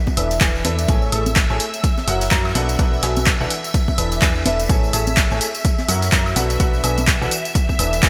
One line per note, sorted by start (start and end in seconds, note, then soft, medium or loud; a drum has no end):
0.00 8.09 E5 medium
0.07 kick medium
0.07 tambourine soft
0.07 high conga medium
0.17 0.39 E1 loud
0.17 0.39 E3 medium
0.17 0.39 D4 medium
0.17 0.39 E4 medium
0.17 0.39 A4 medium
0.17 0.39 B4 medium
0.17 0.39 E5 medium
0.17 closed hi-hat medium
0.17 open hi-hat loud
0.17 high woodblock medium
0.31 snare soft
0.31 closed hi-hat soft
0.31 tambourine medium
0.41 0.63 E1 medium
0.41 0.62 E3 medium
0.41 0.62 D4 medium
0.41 0.62 E4 medium
0.41 0.62 A4 medium
0.41 0.62 B4 medium
0.41 0.62 G#5 medium
0.41 kick loud
0.41 snare loud
0.41 clap loud
0.41 closed hi-hat medium
0.41 tambourine medium
0.55 tambourine soft
0.65 0.87 E2 loud
0.65 0.86 D4 medium
0.65 0.86 E4 medium
0.65 0.86 A4 medium
0.65 0.86 B4 medium
0.65 0.86 E5 medium
0.65 closed hi-hat medium
0.65 open hi-hat loud
0.65 high conga medium
0.79 closed hi-hat medium
0.79 tambourine medium
0.88 1.10 A1 medium
0.88 1.10 A3 medium
0.88 1.10 E4 medium
0.88 1.10 G#4 medium
0.88 1.10 A4 medium
0.88 1.10 C#5 medium
0.88 1.10 G#5 loud
0.88 kick loud
0.88 closed hi-hat medium
0.88 tambourine medium
1.02 tambourine soft
1.12 1.47 A1 medium
1.12 1.28 A3 medium
1.12 1.28 E4 medium
1.12 1.28 G#4 medium
1.12 1.28 A4 medium
1.12 1.28 C#5 medium
1.12 1.28 A5 medium
1.12 closed hi-hat medium
1.12 open hi-hat loud
1.12 high woodblock medium
1.26 closed hi-hat soft
1.26 tambourine medium
1.26 high conga medium
1.36 kick loud
1.36 snare loud
1.36 clap loud
1.36 closed hi-hat medium
1.36 tambourine medium
1.50 1.59 A1 medium
1.50 1.62 A3 medium
1.50 1.62 E4 medium
1.50 1.62 G#4 medium
1.50 1.62 A4 medium
1.50 1.62 C#5 medium
1.50 1.62 G#5 medium
1.50 tambourine soft
1.60 closed hi-hat medium
1.60 open hi-hat loud
1.74 closed hi-hat soft
1.74 tambourine medium
1.84 kick loud
1.84 closed hi-hat medium
1.84 tambourine medium
1.97 snare soft
1.97 tambourine soft
1.97 high conga medium
2.08 2.29 F#1 loud
2.08 2.29 F#3 medium
2.08 2.29 E4 medium
2.08 2.29 F#4 medium
2.08 2.29 A#4 medium
2.08 2.29 C#5 medium
2.08 2.29 F#5 medium
2.08 snare soft
2.08 closed hi-hat medium
2.08 open hi-hat loud
2.08 high woodblock medium
2.21 snare medium
2.21 open hi-hat medium
2.21 tambourine medium
2.31 2.53 F#2 loud
2.31 2.53 E4 medium
2.31 2.53 F#4 medium
2.31 2.53 A#4 medium
2.31 2.53 C#5 medium
2.31 2.53 A#5 medium
2.31 kick loud
2.31 snare loud
2.31 clap loud
2.31 closed hi-hat medium
2.31 tambourine medium
2.45 tambourine soft
2.45 high woodblock medium
2.55 2.77 B1 loud
2.55 2.76 B2 medium
2.55 2.76 D4 medium
2.55 2.76 F#4 medium
2.55 2.76 A4 medium
2.55 2.76 B4 medium
2.55 2.76 F#5 medium
2.55 closed hi-hat medium
2.55 open hi-hat loud
2.55 high conga medium
2.69 closed hi-hat medium
2.69 tambourine medium
2.79 3.01 B1 medium
2.79 3.00 B2 medium
2.79 3.00 D4 medium
2.79 3.00 F#4 medium
2.79 3.00 A4 medium
2.79 3.00 B4 medium
2.79 3.00 F#5 loud
2.79 kick loud
2.79 closed hi-hat medium
2.79 tambourine medium
2.94 tambourine soft
3.03 3.38 B1 medium
3.03 3.18 B2 medium
3.03 3.18 D4 medium
3.03 3.18 F#4 medium
3.03 3.18 A4 medium
3.03 3.18 B4 medium
3.03 3.18 G#5 medium
3.03 snare loud
3.03 closed hi-hat medium
3.03 open hi-hat loud
3.03 high woodblock medium
3.16 closed hi-hat soft
3.16 tambourine medium
3.16 high conga medium
3.26 kick loud
3.26 snare loud
3.26 clap loud
3.26 closed hi-hat medium
3.26 tambourine medium
3.40 3.47 B1 loud
3.40 3.49 E3 medium
3.40 3.49 D4 medium
3.40 3.49 F#4 medium
3.40 3.49 A4 medium
3.40 3.49 B4 medium
3.40 3.49 F#5 medium
3.40 tambourine soft
3.50 closed hi-hat medium
3.50 open hi-hat loud
3.64 closed hi-hat soft
3.64 tambourine medium
3.74 kick loud
3.74 closed hi-hat medium
3.74 tambourine medium
3.88 kick medium
3.88 tambourine soft
3.88 high conga medium
3.98 4.20 E1 medium
3.98 4.19 E3 medium
3.98 4.19 D4 medium
3.98 4.19 E4 medium
3.98 4.19 A4 medium
3.98 4.19 B4 medium
3.98 4.19 E5 medium
3.98 closed hi-hat medium
3.98 open hi-hat loud
3.98 high woodblock medium
4.12 snare soft
4.12 closed hi-hat soft
4.12 tambourine medium
4.22 4.44 E2 medium
4.22 4.43 E3 medium
4.22 4.43 D4 medium
4.22 4.43 E4 medium
4.22 4.43 A4 medium
4.22 4.43 B4 medium
4.22 4.43 G#5 medium
4.22 kick loud
4.22 snare loud
4.22 clap loud
4.22 closed hi-hat medium
4.22 tambourine medium
4.35 tambourine soft
4.45 4.68 E1 loud
4.45 4.67 D4 medium
4.45 4.67 E4 medium
4.45 4.67 A4 medium
4.45 4.67 B4 medium
4.45 4.67 E5 medium
4.45 closed hi-hat medium
4.45 open hi-hat loud
4.45 high conga medium
4.59 closed hi-hat medium
4.59 tambourine medium
4.69 4.91 A1 loud
4.69 4.91 A3 medium
4.69 4.91 E4 medium
4.69 4.91 G#4 medium
4.69 4.91 A4 medium
4.69 4.91 C#5 medium
4.69 4.91 G#5 loud
4.69 kick loud
4.69 closed hi-hat medium
4.69 tambourine medium
4.69 tambourine soft
4.83 tambourine soft
4.93 5.28 A1 medium
4.93 5.08 A3 medium
4.93 5.08 E4 medium
4.93 5.08 G#4 medium
4.93 5.08 A4 medium
4.93 5.08 C#5 medium
4.93 5.08 A5 medium
4.93 closed hi-hat medium
4.93 open hi-hat loud
4.93 tambourine medium
4.93 high woodblock medium
5.07 closed hi-hat soft
5.07 tambourine medium
5.07 tambourine soft
5.07 high conga medium
5.17 kick loud
5.17 snare loud
5.17 clap loud
5.17 closed hi-hat medium
5.17 tambourine medium
5.17 tambourine soft
5.30 5.40 A1 medium
5.30 5.43 A3 medium
5.30 5.43 E4 medium
5.30 5.43 G#4 medium
5.30 5.43 A4 medium
5.30 5.43 C#5 medium
5.30 5.43 G#5 medium
5.30 tambourine soft
5.41 closed hi-hat medium
5.41 open hi-hat loud
5.41 tambourine medium
5.54 closed hi-hat soft
5.54 tambourine medium
5.54 tambourine soft
5.65 kick loud
5.65 closed hi-hat medium
5.65 tambourine medium
5.65 tambourine soft
5.78 snare soft
5.78 tambourine soft
5.78 high conga medium
5.88 6.10 F#2 medium
5.88 6.10 F#3 medium
5.88 6.10 E4 medium
5.88 6.10 F#4 medium
5.88 6.10 A#4 medium
5.88 6.10 C#5 medium
5.88 6.10 F#5 medium
5.88 snare soft
5.88 closed hi-hat medium
5.88 open hi-hat loud
5.88 tambourine medium
5.88 high woodblock medium
6.02 snare medium
6.02 open hi-hat medium
6.02 tambourine medium
6.02 tambourine soft
6.12 6.34 F#2 loud
6.12 6.34 E4 medium
6.12 6.34 F#4 medium
6.12 6.34 A#4 medium
6.12 6.34 C#5 medium
6.12 6.34 A#5 medium
6.12 kick loud
6.12 snare loud
6.12 clap loud
6.12 closed hi-hat medium
6.12 tambourine medium
6.12 tambourine soft
6.26 tambourine soft
6.26 high woodblock medium
6.36 6.58 B1 loud
6.36 6.57 B2 medium
6.36 6.57 D4 medium
6.36 6.57 F#4 medium
6.36 6.57 A4 medium
6.36 6.57 B4 medium
6.36 6.57 F#5 medium
6.36 closed hi-hat medium
6.36 open hi-hat loud
6.36 tambourine medium
6.36 high conga medium
6.50 closed hi-hat medium
6.50 tambourine medium
6.50 tambourine soft
6.60 6.82 B1 medium
6.60 6.81 B2 medium
6.60 6.81 D4 medium
6.60 6.81 F#4 medium
6.60 6.81 A4 medium
6.60 6.81 B4 medium
6.60 6.81 F#5 medium
6.60 kick loud
6.60 closed hi-hat medium
6.60 tambourine medium
6.60 tambourine soft
6.73 tambourine soft
6.84 7.19 B1 medium
6.84 6.99 B2 medium
6.84 6.99 D4 medium
6.84 6.99 F#4 medium
6.84 6.99 A4 medium
6.84 6.99 B4 medium
6.84 6.99 G#5 medium
6.84 closed hi-hat medium
6.84 open hi-hat loud
6.84 tambourine medium
6.84 high woodblock medium
6.98 closed hi-hat medium
6.98 tambourine medium
6.98 tambourine soft
6.98 high conga medium
7.07 kick loud
7.07 snare loud
7.07 clap loud
7.07 closed hi-hat medium
7.07 tambourine soft
7.21 7.28 B1 medium
7.21 7.30 E3 medium
7.21 7.30 D4 medium
7.21 7.30 F#4 medium
7.21 7.30 A4 medium
7.21 7.30 B4 medium
7.21 7.30 F#5 medium
7.21 tambourine soft
7.31 closed hi-hat medium
7.31 open hi-hat loud
7.31 tambourine medium
7.45 closed hi-hat medium
7.45 tambourine medium
7.45 tambourine soft
7.55 kick loud
7.55 closed hi-hat medium
7.55 tambourine medium
7.55 tambourine soft
7.69 kick medium
7.69 tambourine soft
7.69 high conga medium
7.79 8.01 E1 loud
7.79 8.00 E3 medium
7.79 8.00 D4 medium
7.79 8.00 E4 medium
7.79 8.00 A4 medium
7.79 8.00 B4 medium
7.79 8.00 E5 medium
7.79 closed hi-hat medium
7.79 open hi-hat loud
7.79 tambourine medium
7.79 high woodblock medium
7.93 snare soft
7.93 closed hi-hat medium
7.93 tambourine medium
7.93 tambourine soft
8.03 8.09 E1 medium
8.03 8.09 E3 medium
8.03 8.09 D4 medium
8.03 8.09 E4 medium
8.03 8.09 A4 medium
8.03 8.09 B4 medium
8.03 8.09 G#5 medium
8.03 kick loud
8.03 snare loud
8.03 clap loud
8.03 closed hi-hat medium
8.03 tambourine medium
8.03 tambourine soft